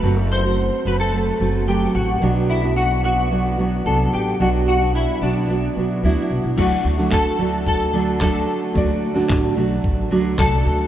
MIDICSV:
0, 0, Header, 1, 6, 480
1, 0, Start_track
1, 0, Tempo, 544959
1, 32, Time_signature, 4, 2, 24, 8
1, 9577, End_track
2, 0, Start_track
2, 0, Title_t, "Clean electric guitar"
2, 0, Program_c, 0, 27
2, 0, Note_on_c, 0, 71, 76
2, 182, Note_off_c, 0, 71, 0
2, 182, Note_on_c, 0, 69, 76
2, 275, Note_off_c, 0, 69, 0
2, 279, Note_on_c, 0, 72, 88
2, 764, Note_off_c, 0, 72, 0
2, 767, Note_on_c, 0, 71, 86
2, 874, Note_off_c, 0, 71, 0
2, 878, Note_on_c, 0, 69, 80
2, 1476, Note_off_c, 0, 69, 0
2, 1480, Note_on_c, 0, 67, 78
2, 1713, Note_off_c, 0, 67, 0
2, 1716, Note_on_c, 0, 66, 75
2, 2196, Note_off_c, 0, 66, 0
2, 2199, Note_on_c, 0, 64, 75
2, 2431, Note_off_c, 0, 64, 0
2, 2435, Note_on_c, 0, 66, 76
2, 2658, Note_off_c, 0, 66, 0
2, 2680, Note_on_c, 0, 66, 84
2, 3396, Note_off_c, 0, 66, 0
2, 3400, Note_on_c, 0, 69, 78
2, 3620, Note_off_c, 0, 69, 0
2, 3642, Note_on_c, 0, 67, 69
2, 3861, Note_off_c, 0, 67, 0
2, 3883, Note_on_c, 0, 66, 71
2, 3947, Note_off_c, 0, 66, 0
2, 4122, Note_on_c, 0, 66, 81
2, 4358, Note_off_c, 0, 66, 0
2, 4361, Note_on_c, 0, 64, 71
2, 4581, Note_off_c, 0, 64, 0
2, 4595, Note_on_c, 0, 62, 62
2, 5279, Note_off_c, 0, 62, 0
2, 5327, Note_on_c, 0, 64, 65
2, 5792, Note_on_c, 0, 66, 79
2, 5814, Note_off_c, 0, 64, 0
2, 6238, Note_off_c, 0, 66, 0
2, 6276, Note_on_c, 0, 69, 96
2, 6750, Note_off_c, 0, 69, 0
2, 6760, Note_on_c, 0, 69, 86
2, 7224, Note_off_c, 0, 69, 0
2, 7234, Note_on_c, 0, 69, 74
2, 7567, Note_off_c, 0, 69, 0
2, 9154, Note_on_c, 0, 69, 85
2, 9577, Note_off_c, 0, 69, 0
2, 9577, End_track
3, 0, Start_track
3, 0, Title_t, "Felt piano"
3, 0, Program_c, 1, 0
3, 5783, Note_on_c, 1, 57, 53
3, 5804, Note_on_c, 1, 66, 50
3, 5819, Note_on_c, 1, 74, 54
3, 5969, Control_c, 1, 64, 127
3, 7670, Note_off_c, 1, 57, 0
3, 7680, Note_off_c, 1, 66, 0
3, 7688, Note_off_c, 1, 74, 0
3, 7698, Note_on_c, 1, 57, 63
3, 7714, Note_on_c, 1, 66, 59
3, 7730, Note_on_c, 1, 74, 79
3, 9577, Note_off_c, 1, 57, 0
3, 9577, Note_off_c, 1, 66, 0
3, 9577, Note_off_c, 1, 74, 0
3, 9577, End_track
4, 0, Start_track
4, 0, Title_t, "Steel-string acoustic guitar"
4, 0, Program_c, 2, 25
4, 24, Note_on_c, 2, 54, 60
4, 32, Note_on_c, 2, 57, 75
4, 38, Note_on_c, 2, 60, 81
4, 44, Note_on_c, 2, 66, 74
4, 370, Note_off_c, 2, 66, 0
4, 380, Note_on_c, 2, 66, 45
4, 385, Note_off_c, 2, 60, 0
4, 388, Note_off_c, 2, 54, 0
4, 392, Note_off_c, 2, 57, 0
4, 396, Note_on_c, 2, 60, 45
4, 405, Note_on_c, 2, 57, 40
4, 746, Note_off_c, 2, 57, 0
4, 746, Note_on_c, 2, 54, 49
4, 747, Note_off_c, 2, 66, 0
4, 752, Note_off_c, 2, 60, 0
4, 756, Note_on_c, 2, 57, 49
4, 763, Note_on_c, 2, 60, 50
4, 769, Note_on_c, 2, 66, 57
4, 976, Note_off_c, 2, 54, 0
4, 986, Note_on_c, 2, 54, 53
4, 987, Note_off_c, 2, 57, 0
4, 995, Note_off_c, 2, 60, 0
4, 997, Note_on_c, 2, 57, 56
4, 1001, Note_off_c, 2, 66, 0
4, 1005, Note_on_c, 2, 60, 59
4, 1013, Note_on_c, 2, 66, 55
4, 1216, Note_off_c, 2, 54, 0
4, 1226, Note_off_c, 2, 57, 0
4, 1227, Note_on_c, 2, 54, 50
4, 1233, Note_off_c, 2, 60, 0
4, 1237, Note_on_c, 2, 57, 57
4, 1243, Note_off_c, 2, 66, 0
4, 1243, Note_on_c, 2, 60, 54
4, 1252, Note_on_c, 2, 66, 57
4, 1459, Note_off_c, 2, 54, 0
4, 1470, Note_on_c, 2, 54, 55
4, 1472, Note_off_c, 2, 57, 0
4, 1478, Note_off_c, 2, 60, 0
4, 1483, Note_off_c, 2, 66, 0
4, 1483, Note_on_c, 2, 57, 60
4, 1488, Note_on_c, 2, 60, 66
4, 1495, Note_on_c, 2, 66, 62
4, 1949, Note_on_c, 2, 47, 67
4, 1952, Note_off_c, 2, 54, 0
4, 1955, Note_on_c, 2, 54, 69
4, 1956, Note_off_c, 2, 57, 0
4, 1959, Note_off_c, 2, 60, 0
4, 1960, Note_on_c, 2, 59, 71
4, 1962, Note_on_c, 2, 62, 70
4, 1963, Note_off_c, 2, 66, 0
4, 1967, Note_on_c, 2, 66, 68
4, 2293, Note_off_c, 2, 66, 0
4, 2304, Note_on_c, 2, 66, 53
4, 2308, Note_off_c, 2, 62, 0
4, 2311, Note_off_c, 2, 47, 0
4, 2314, Note_off_c, 2, 54, 0
4, 2317, Note_off_c, 2, 59, 0
4, 2319, Note_on_c, 2, 62, 50
4, 2329, Note_on_c, 2, 59, 42
4, 2663, Note_off_c, 2, 59, 0
4, 2666, Note_on_c, 2, 54, 48
4, 2669, Note_off_c, 2, 66, 0
4, 2673, Note_off_c, 2, 62, 0
4, 2674, Note_on_c, 2, 59, 52
4, 2684, Note_on_c, 2, 62, 51
4, 2692, Note_on_c, 2, 66, 58
4, 2896, Note_off_c, 2, 54, 0
4, 2907, Note_on_c, 2, 54, 51
4, 2908, Note_off_c, 2, 59, 0
4, 2916, Note_off_c, 2, 62, 0
4, 2919, Note_on_c, 2, 59, 51
4, 2923, Note_off_c, 2, 66, 0
4, 2927, Note_on_c, 2, 62, 62
4, 2934, Note_on_c, 2, 66, 66
4, 3137, Note_off_c, 2, 54, 0
4, 3147, Note_off_c, 2, 59, 0
4, 3148, Note_on_c, 2, 54, 54
4, 3154, Note_off_c, 2, 62, 0
4, 3158, Note_on_c, 2, 59, 55
4, 3164, Note_off_c, 2, 66, 0
4, 3165, Note_on_c, 2, 62, 60
4, 3173, Note_on_c, 2, 66, 57
4, 3376, Note_off_c, 2, 54, 0
4, 3386, Note_on_c, 2, 54, 58
4, 3389, Note_off_c, 2, 59, 0
4, 3397, Note_off_c, 2, 62, 0
4, 3400, Note_on_c, 2, 59, 58
4, 3403, Note_off_c, 2, 66, 0
4, 3407, Note_on_c, 2, 62, 60
4, 3414, Note_on_c, 2, 66, 61
4, 3868, Note_off_c, 2, 59, 0
4, 3868, Note_on_c, 2, 47, 59
4, 3872, Note_off_c, 2, 54, 0
4, 3876, Note_on_c, 2, 54, 65
4, 3879, Note_off_c, 2, 62, 0
4, 3879, Note_on_c, 2, 59, 62
4, 3882, Note_on_c, 2, 62, 77
4, 3884, Note_off_c, 2, 66, 0
4, 3887, Note_on_c, 2, 66, 70
4, 4222, Note_off_c, 2, 66, 0
4, 4231, Note_off_c, 2, 47, 0
4, 4233, Note_on_c, 2, 66, 50
4, 4235, Note_off_c, 2, 54, 0
4, 4235, Note_off_c, 2, 62, 0
4, 4236, Note_off_c, 2, 59, 0
4, 4246, Note_on_c, 2, 62, 48
4, 4258, Note_on_c, 2, 59, 41
4, 4587, Note_on_c, 2, 54, 44
4, 4588, Note_off_c, 2, 59, 0
4, 4593, Note_off_c, 2, 66, 0
4, 4596, Note_off_c, 2, 62, 0
4, 4599, Note_on_c, 2, 59, 50
4, 4607, Note_on_c, 2, 62, 56
4, 4614, Note_on_c, 2, 66, 58
4, 4812, Note_off_c, 2, 54, 0
4, 4823, Note_off_c, 2, 59, 0
4, 4823, Note_on_c, 2, 54, 46
4, 4833, Note_off_c, 2, 62, 0
4, 4834, Note_on_c, 2, 59, 59
4, 4839, Note_off_c, 2, 66, 0
4, 4843, Note_on_c, 2, 62, 57
4, 4850, Note_on_c, 2, 66, 52
4, 5056, Note_off_c, 2, 54, 0
4, 5066, Note_on_c, 2, 54, 51
4, 5068, Note_off_c, 2, 59, 0
4, 5076, Note_off_c, 2, 62, 0
4, 5078, Note_on_c, 2, 59, 57
4, 5081, Note_off_c, 2, 66, 0
4, 5086, Note_on_c, 2, 62, 61
4, 5095, Note_on_c, 2, 66, 58
4, 5296, Note_off_c, 2, 54, 0
4, 5306, Note_off_c, 2, 59, 0
4, 5306, Note_on_c, 2, 54, 64
4, 5312, Note_off_c, 2, 62, 0
4, 5317, Note_on_c, 2, 59, 56
4, 5320, Note_off_c, 2, 66, 0
4, 5323, Note_on_c, 2, 62, 66
4, 5331, Note_on_c, 2, 66, 72
4, 5785, Note_off_c, 2, 54, 0
4, 5788, Note_on_c, 2, 54, 50
4, 5792, Note_off_c, 2, 59, 0
4, 5796, Note_on_c, 2, 57, 59
4, 5801, Note_off_c, 2, 62, 0
4, 5804, Note_on_c, 2, 62, 49
4, 5808, Note_off_c, 2, 66, 0
4, 5811, Note_on_c, 2, 66, 61
4, 6138, Note_off_c, 2, 66, 0
4, 6143, Note_off_c, 2, 62, 0
4, 6148, Note_off_c, 2, 57, 0
4, 6149, Note_on_c, 2, 66, 55
4, 6150, Note_off_c, 2, 54, 0
4, 6154, Note_on_c, 2, 62, 62
4, 6159, Note_on_c, 2, 57, 57
4, 6162, Note_on_c, 2, 54, 57
4, 6166, Note_on_c, 2, 50, 58
4, 6493, Note_off_c, 2, 54, 0
4, 6502, Note_off_c, 2, 57, 0
4, 6504, Note_on_c, 2, 54, 58
4, 6510, Note_off_c, 2, 66, 0
4, 6512, Note_on_c, 2, 57, 58
4, 6513, Note_off_c, 2, 62, 0
4, 6518, Note_off_c, 2, 50, 0
4, 6523, Note_on_c, 2, 62, 63
4, 6529, Note_on_c, 2, 66, 64
4, 6983, Note_off_c, 2, 57, 0
4, 6984, Note_on_c, 2, 50, 72
4, 6986, Note_off_c, 2, 54, 0
4, 6989, Note_off_c, 2, 62, 0
4, 6990, Note_on_c, 2, 54, 67
4, 6994, Note_on_c, 2, 57, 70
4, 6997, Note_off_c, 2, 66, 0
4, 6999, Note_on_c, 2, 62, 75
4, 7000, Note_on_c, 2, 66, 73
4, 7212, Note_off_c, 2, 54, 0
4, 7221, Note_off_c, 2, 57, 0
4, 7222, Note_on_c, 2, 54, 57
4, 7227, Note_off_c, 2, 50, 0
4, 7230, Note_off_c, 2, 62, 0
4, 7232, Note_on_c, 2, 57, 69
4, 7235, Note_off_c, 2, 66, 0
4, 7241, Note_on_c, 2, 62, 64
4, 7248, Note_on_c, 2, 66, 61
4, 7697, Note_off_c, 2, 54, 0
4, 7699, Note_off_c, 2, 57, 0
4, 7701, Note_on_c, 2, 54, 59
4, 7706, Note_off_c, 2, 62, 0
4, 7709, Note_on_c, 2, 57, 66
4, 7716, Note_on_c, 2, 62, 70
4, 7723, Note_off_c, 2, 66, 0
4, 7726, Note_on_c, 2, 66, 70
4, 8044, Note_off_c, 2, 66, 0
4, 8053, Note_off_c, 2, 62, 0
4, 8054, Note_off_c, 2, 57, 0
4, 8054, Note_on_c, 2, 66, 72
4, 8060, Note_off_c, 2, 54, 0
4, 8064, Note_on_c, 2, 62, 74
4, 8065, Note_on_c, 2, 57, 66
4, 8070, Note_on_c, 2, 54, 63
4, 8074, Note_on_c, 2, 50, 68
4, 8406, Note_off_c, 2, 54, 0
4, 8417, Note_on_c, 2, 54, 65
4, 8418, Note_off_c, 2, 57, 0
4, 8421, Note_off_c, 2, 66, 0
4, 8424, Note_off_c, 2, 62, 0
4, 8429, Note_on_c, 2, 57, 64
4, 8431, Note_off_c, 2, 50, 0
4, 8435, Note_on_c, 2, 62, 70
4, 8442, Note_on_c, 2, 66, 70
4, 8898, Note_off_c, 2, 57, 0
4, 8900, Note_on_c, 2, 50, 73
4, 8902, Note_off_c, 2, 54, 0
4, 8902, Note_off_c, 2, 62, 0
4, 8905, Note_on_c, 2, 54, 84
4, 8908, Note_on_c, 2, 57, 89
4, 8913, Note_on_c, 2, 62, 85
4, 8914, Note_off_c, 2, 66, 0
4, 8917, Note_on_c, 2, 66, 92
4, 9125, Note_off_c, 2, 54, 0
4, 9135, Note_off_c, 2, 57, 0
4, 9135, Note_on_c, 2, 54, 61
4, 9144, Note_off_c, 2, 50, 0
4, 9145, Note_off_c, 2, 62, 0
4, 9146, Note_on_c, 2, 57, 68
4, 9152, Note_off_c, 2, 66, 0
4, 9155, Note_on_c, 2, 62, 66
4, 9162, Note_on_c, 2, 66, 77
4, 9577, Note_off_c, 2, 54, 0
4, 9577, Note_off_c, 2, 57, 0
4, 9577, Note_off_c, 2, 62, 0
4, 9577, Note_off_c, 2, 66, 0
4, 9577, End_track
5, 0, Start_track
5, 0, Title_t, "Upright bass"
5, 0, Program_c, 3, 32
5, 28, Note_on_c, 3, 30, 90
5, 600, Note_off_c, 3, 30, 0
5, 750, Note_on_c, 3, 30, 81
5, 1145, Note_off_c, 3, 30, 0
5, 1231, Note_on_c, 3, 30, 70
5, 1626, Note_off_c, 3, 30, 0
5, 1714, Note_on_c, 3, 33, 83
5, 1911, Note_off_c, 3, 33, 0
5, 1952, Note_on_c, 3, 35, 89
5, 3358, Note_off_c, 3, 35, 0
5, 3396, Note_on_c, 3, 36, 78
5, 3592, Note_off_c, 3, 36, 0
5, 3634, Note_on_c, 3, 33, 84
5, 3831, Note_off_c, 3, 33, 0
5, 3876, Note_on_c, 3, 35, 82
5, 4445, Note_off_c, 3, 35, 0
5, 4592, Note_on_c, 3, 35, 82
5, 4986, Note_off_c, 3, 35, 0
5, 5075, Note_on_c, 3, 35, 67
5, 5271, Note_off_c, 3, 35, 0
5, 5315, Note_on_c, 3, 38, 83
5, 5412, Note_off_c, 3, 38, 0
5, 5552, Note_on_c, 3, 35, 76
5, 5651, Note_off_c, 3, 35, 0
5, 5670, Note_on_c, 3, 35, 68
5, 5769, Note_off_c, 3, 35, 0
5, 5792, Note_on_c, 3, 38, 90
5, 5989, Note_off_c, 3, 38, 0
5, 6030, Note_on_c, 3, 38, 81
5, 6227, Note_off_c, 3, 38, 0
5, 6272, Note_on_c, 3, 50, 85
5, 6468, Note_off_c, 3, 50, 0
5, 6509, Note_on_c, 3, 38, 76
5, 7434, Note_off_c, 3, 38, 0
5, 7711, Note_on_c, 3, 38, 88
5, 8104, Note_off_c, 3, 38, 0
5, 8190, Note_on_c, 3, 33, 88
5, 8386, Note_off_c, 3, 33, 0
5, 8426, Note_on_c, 3, 35, 84
5, 8624, Note_off_c, 3, 35, 0
5, 8668, Note_on_c, 3, 33, 81
5, 8865, Note_off_c, 3, 33, 0
5, 8906, Note_on_c, 3, 38, 78
5, 9103, Note_off_c, 3, 38, 0
5, 9149, Note_on_c, 3, 36, 90
5, 9345, Note_off_c, 3, 36, 0
5, 9386, Note_on_c, 3, 38, 86
5, 9577, Note_off_c, 3, 38, 0
5, 9577, End_track
6, 0, Start_track
6, 0, Title_t, "Drums"
6, 5793, Note_on_c, 9, 36, 95
6, 5793, Note_on_c, 9, 49, 80
6, 5881, Note_off_c, 9, 36, 0
6, 5881, Note_off_c, 9, 49, 0
6, 6265, Note_on_c, 9, 39, 102
6, 6273, Note_on_c, 9, 36, 111
6, 6353, Note_off_c, 9, 39, 0
6, 6361, Note_off_c, 9, 36, 0
6, 6752, Note_on_c, 9, 36, 93
6, 6840, Note_off_c, 9, 36, 0
6, 7228, Note_on_c, 9, 39, 90
6, 7232, Note_on_c, 9, 36, 101
6, 7316, Note_off_c, 9, 39, 0
6, 7320, Note_off_c, 9, 36, 0
6, 7711, Note_on_c, 9, 36, 93
6, 7799, Note_off_c, 9, 36, 0
6, 8185, Note_on_c, 9, 39, 105
6, 8191, Note_on_c, 9, 36, 111
6, 8273, Note_off_c, 9, 39, 0
6, 8279, Note_off_c, 9, 36, 0
6, 8669, Note_on_c, 9, 36, 96
6, 8757, Note_off_c, 9, 36, 0
6, 9149, Note_on_c, 9, 36, 104
6, 9149, Note_on_c, 9, 39, 94
6, 9237, Note_off_c, 9, 36, 0
6, 9237, Note_off_c, 9, 39, 0
6, 9577, End_track
0, 0, End_of_file